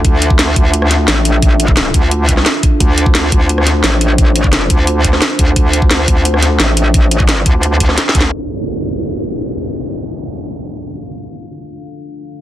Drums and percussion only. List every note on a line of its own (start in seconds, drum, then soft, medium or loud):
0.05 kick loud
0.05 closed hi-hat medium
0.22 closed hi-hat medium
0.30 kick loud
0.39 snare loud
0.39 closed hi-hat medium
0.48 cross-stick soft
0.56 kick loud
0.56 closed hi-hat medium
0.74 closed hi-hat medium
0.82 cross-stick soft
0.91 snare soft
0.91 closed hi-hat medium
1.08 snare loud
1.08 closed hi-hat medium
1.25 closed hi-hat medium
1.42 kick loud
1.42 closed hi-hat medium
1.60 closed hi-hat medium
1.68 kick loud
1.77 snare loud
1.77 closed hi-hat medium
1.86 cross-stick soft
1.94 kick loud
1.94 closed hi-hat medium
2.11 closed hi-hat medium
2.29 kick medium
2.29 closed hi-hat medium
2.37 cross-stick soft
2.37 snare soft
2.46 snare loud
2.46 closed hi-hat medium
2.63 kick loud
2.63 closed hi-hat medium
2.80 kick loud
2.80 closed hi-hat medium
2.98 closed hi-hat medium
3.06 kick loud
3.15 snare loud
3.15 closed hi-hat medium
3.24 cross-stick soft
3.32 kick loud
3.32 closed hi-hat medium
3.49 closed hi-hat medium
3.58 cross-stick soft
3.67 snare soft
3.67 closed hi-hat medium
3.84 snare loud
3.84 closed hi-hat medium
4.01 closed hi-hat medium
4.18 kick loud
4.18 closed hi-hat medium
4.36 closed hi-hat medium
4.44 kick loud
4.53 snare loud
4.53 closed hi-hat medium
4.61 cross-stick soft
4.70 kick loud
4.70 closed hi-hat medium
4.87 closed hi-hat medium
5.04 kick medium
5.04 closed hi-hat medium
5.13 cross-stick soft
5.13 snare soft
5.22 snare loud
5.22 closed hi-hat medium
5.39 kick loud
5.39 closed hi-hat medium
5.56 kick loud
5.56 closed hi-hat medium
5.73 closed hi-hat medium
5.82 kick loud
5.91 snare loud
5.91 closed hi-hat medium
5.99 cross-stick soft
6.08 kick loud
6.08 closed hi-hat medium
6.25 closed hi-hat medium
6.34 cross-stick soft
6.42 snare soft
6.42 closed hi-hat medium
6.60 snare loud
6.60 closed hi-hat medium
6.77 closed hi-hat loud
6.94 kick loud
6.94 closed hi-hat medium
7.11 closed hi-hat loud
7.20 kick loud
7.29 snare loud
7.29 closed hi-hat medium
7.37 cross-stick soft
7.46 kick loud
7.46 closed hi-hat medium
7.63 closed hi-hat medium
7.80 kick medium
7.80 closed hi-hat loud
7.89 cross-stick soft
7.89 snare soft
7.98 snare medium
7.98 closed hi-hat medium
8.09 snare medium
8.15 kick loud
8.15 closed hi-hat loud
8.21 snare medium